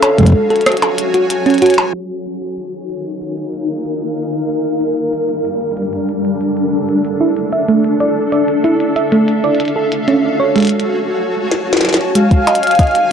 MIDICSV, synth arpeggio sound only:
0, 0, Header, 1, 2, 480
1, 0, Start_track
1, 0, Tempo, 638298
1, 1459, Time_signature, 4, 2, 24, 8
1, 9867, End_track
2, 0, Start_track
2, 0, Title_t, "Synth arpeggio sound"
2, 0, Program_c, 0, 84
2, 19, Note_on_c, 0, 73, 105
2, 72, Note_off_c, 0, 73, 0
2, 139, Note_on_c, 0, 56, 102
2, 228, Note_off_c, 0, 56, 0
2, 379, Note_on_c, 0, 69, 104
2, 468, Note_off_c, 0, 69, 0
2, 619, Note_on_c, 0, 69, 78
2, 708, Note_off_c, 0, 69, 0
2, 859, Note_on_c, 0, 66, 78
2, 973, Note_off_c, 0, 66, 0
2, 1099, Note_on_c, 0, 61, 104
2, 1153, Note_off_c, 0, 61, 0
2, 1219, Note_on_c, 0, 66, 103
2, 1333, Note_off_c, 0, 66, 0
2, 5419, Note_on_c, 0, 64, 100
2, 5533, Note_off_c, 0, 64, 0
2, 5659, Note_on_c, 0, 76, 97
2, 5712, Note_off_c, 0, 76, 0
2, 5779, Note_on_c, 0, 57, 100
2, 5868, Note_off_c, 0, 57, 0
2, 6019, Note_on_c, 0, 74, 96
2, 6108, Note_off_c, 0, 74, 0
2, 6259, Note_on_c, 0, 74, 78
2, 6348, Note_off_c, 0, 74, 0
2, 6499, Note_on_c, 0, 64, 100
2, 6613, Note_off_c, 0, 64, 0
2, 6739, Note_on_c, 0, 76, 100
2, 6792, Note_off_c, 0, 76, 0
2, 6859, Note_on_c, 0, 57, 101
2, 6948, Note_off_c, 0, 57, 0
2, 7099, Note_on_c, 0, 74, 98
2, 7188, Note_off_c, 0, 74, 0
2, 7339, Note_on_c, 0, 69, 75
2, 7428, Note_off_c, 0, 69, 0
2, 7579, Note_on_c, 0, 61, 97
2, 7693, Note_off_c, 0, 61, 0
2, 7819, Note_on_c, 0, 73, 100
2, 7872, Note_off_c, 0, 73, 0
2, 7939, Note_on_c, 0, 56, 99
2, 8028, Note_off_c, 0, 56, 0
2, 9139, Note_on_c, 0, 56, 105
2, 9228, Note_off_c, 0, 56, 0
2, 9379, Note_on_c, 0, 75, 102
2, 9468, Note_off_c, 0, 75, 0
2, 9619, Note_on_c, 0, 75, 84
2, 9708, Note_off_c, 0, 75, 0
2, 9867, End_track
0, 0, End_of_file